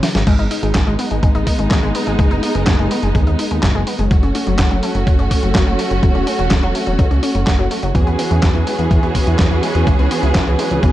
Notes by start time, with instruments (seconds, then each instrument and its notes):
0.03 synth arpeggio sound E3, snare, open hi-hat
0.15 analog synth bass G#1, synth arpeggio sound C#3, snare, closed hi-hat
0.27 analog synth bass G#1, string section G#3 B3 D#4, synth arpeggio sound G#3, kick, closed hi-hat, crash
0.39 analog synth bass G#1, synth arpeggio sound D#4, closed hi-hat
0.51 synth arpeggio sound D#4, open hi-hat
0.63 analog synth bass G#1, synth arpeggio sound G#3, closed hi-hat
0.75 analog synth bass G#1, synth arpeggio sound G#4, kick, snare, clap, closed hi-hat
0.87 analog synth bass G#1, synth arpeggio sound G#3, closed hi-hat
0.99 synth arpeggio sound B3, open hi-hat
1.11 analog synth bass G#1, synth arpeggio sound G#3, closed hi-hat
1.23 analog synth bass G#1, synth arpeggio sound G#3, kick, closed hi-hat
1.35 analog synth bass G#1, synth arpeggio sound D#4, closed hi-hat
1.47 synth arpeggio sound D#4, kick, open hi-hat
1.59 analog synth bass G#1, synth arpeggio sound G#3, closed hi-hat
1.71 analog synth bass G#1, synth arpeggio sound G#4, kick, snare, clap, closed hi-hat
1.83 analog synth bass G#1, synth arpeggio sound G#3, closed hi-hat
1.95 synth arpeggio sound B3, open hi-hat
2.07 analog synth bass G#1, synth arpeggio sound G#3, closed hi-hat
2.19 analog synth bass F#1, synth arpeggio sound G#3, kick, closed hi-hat
2.31 analog synth bass F#1, synth arpeggio sound D#4, closed hi-hat
2.43 synth arpeggio sound D#4, open hi-hat
2.55 analog synth bass F#1, synth arpeggio sound G#3, closed hi-hat
2.67 analog synth bass F#1, synth arpeggio sound G#4, kick, snare, clap, closed hi-hat
2.79 analog synth bass F#1, synth arpeggio sound G#3, closed hi-hat
2.91 synth arpeggio sound B3, open hi-hat
3.03 analog synth bass F#1, synth arpeggio sound G#3, closed hi-hat
3.15 analog synth bass D#2, synth arpeggio sound G#3, kick, closed hi-hat
3.27 analog synth bass D#2, synth arpeggio sound D#4, closed hi-hat
3.39 synth arpeggio sound D#4, open hi-hat
3.51 analog synth bass D#2, synth arpeggio sound G#3, closed hi-hat
3.63 analog synth bass F#1, synth arpeggio sound G#4, kick, snare, clap, closed hi-hat
3.75 analog synth bass F#1, synth arpeggio sound G#3, closed hi-hat
3.87 synth arpeggio sound B3, open hi-hat
3.99 analog synth bass F#1, synth arpeggio sound G#3, closed hi-hat
4.11 analog synth bass F#1, synth arpeggio sound F#3, string section A3 C#4 F#4, kick, closed hi-hat
4.23 analog synth bass F#1, synth arpeggio sound C#4, closed hi-hat
4.35 synth arpeggio sound C#4, open hi-hat
4.47 analog synth bass F#1, synth arpeggio sound F#3, closed hi-hat
4.59 analog synth bass F#1, synth arpeggio sound F#4, kick, snare, clap, closed hi-hat
4.71 analog synth bass F#1, synth arpeggio sound F#3, closed hi-hat
4.83 synth arpeggio sound A3, open hi-hat
4.95 analog synth bass F#1, synth arpeggio sound F#3, closed hi-hat
5.07 analog synth bass F#1, synth arpeggio sound F#3, kick, closed hi-hat
5.19 analog synth bass F#1, synth arpeggio sound C#4, closed hi-hat
5.31 synth arpeggio sound C#4, kick, open hi-hat
5.43 analog synth bass F#1, synth arpeggio sound F#3, closed hi-hat
5.55 analog synth bass F#1, synth arpeggio sound F#4, kick, snare, clap, closed hi-hat
5.67 analog synth bass F#1, synth arpeggio sound F#3, closed hi-hat
5.79 synth arpeggio sound A3, open hi-hat
5.91 analog synth bass F#1, synth arpeggio sound F#3, closed hi-hat
6.03 analog synth bass E1, synth arpeggio sound F#3, kick, closed hi-hat
6.15 analog synth bass E1, synth arpeggio sound C#4, closed hi-hat
6.27 synth arpeggio sound C#4, open hi-hat
6.39 analog synth bass E1, synth arpeggio sound F#3, closed hi-hat
6.51 analog synth bass E1, synth arpeggio sound F#4, kick, snare, clap, closed hi-hat
6.63 analog synth bass E1, synth arpeggio sound F#3, closed hi-hat
6.75 synth arpeggio sound A3, open hi-hat
6.87 analog synth bass E1, synth arpeggio sound F#3, closed hi-hat
6.99 analog synth bass C#2, synth arpeggio sound F#3, kick, closed hi-hat
7.11 analog synth bass C#2, synth arpeggio sound C#4, closed hi-hat
7.23 synth arpeggio sound C#4, open hi-hat
7.35 analog synth bass F#1, synth arpeggio sound F#3, closed hi-hat
7.47 analog synth bass F#1, synth arpeggio sound F#4, kick, snare, clap, closed hi-hat
7.59 analog synth bass F#1, synth arpeggio sound F#3, closed hi-hat
7.71 synth arpeggio sound A3, open hi-hat
7.83 analog synth bass F#1, synth arpeggio sound F#3, closed hi-hat
7.95 analog synth bass E2, synth arpeggio sound E3, string section E3 B3 C#4 F#4 G#4, kick, closed hi-hat
8.07 analog synth bass E2, synth arpeggio sound B3, closed hi-hat
8.19 synth arpeggio sound B3, open hi-hat
8.31 analog synth bass E2, synth arpeggio sound E3, closed hi-hat
8.43 analog synth bass E2, synth arpeggio sound E4, kick, snare, clap, closed hi-hat
8.55 analog synth bass E2, synth arpeggio sound E3, closed hi-hat
8.67 synth arpeggio sound G#3, open hi-hat
8.79 analog synth bass E2, synth arpeggio sound E3, closed hi-hat
8.91 analog synth bass E2, synth arpeggio sound E3, kick, closed hi-hat
9.03 analog synth bass E2, synth arpeggio sound B3, closed hi-hat
9.15 synth arpeggio sound B3, kick, open hi-hat
9.27 analog synth bass E2, synth arpeggio sound E3, closed hi-hat
9.39 analog synth bass E2, synth arpeggio sound E4, kick, snare, clap, closed hi-hat
9.51 analog synth bass E2, synth arpeggio sound E3, closed hi-hat
9.63 synth arpeggio sound G#3, open hi-hat
9.75 analog synth bass E2, synth arpeggio sound E3, closed hi-hat
9.87 analog synth bass C#2, synth arpeggio sound E3, kick, closed hi-hat
9.99 analog synth bass C#2, synth arpeggio sound B3, closed hi-hat
10.11 synth arpeggio sound B3, open hi-hat
10.23 analog synth bass C#2, synth arpeggio sound E3, closed hi-hat
10.35 analog synth bass C#2, synth arpeggio sound E4, kick, snare, clap, closed hi-hat
10.47 analog synth bass C#2, synth arpeggio sound E3, closed hi-hat
10.59 synth arpeggio sound G#3, open hi-hat
10.71 analog synth bass C#2, synth arpeggio sound E3, closed hi-hat
10.83 analog synth bass B1, synth arpeggio sound E3, kick, closed hi-hat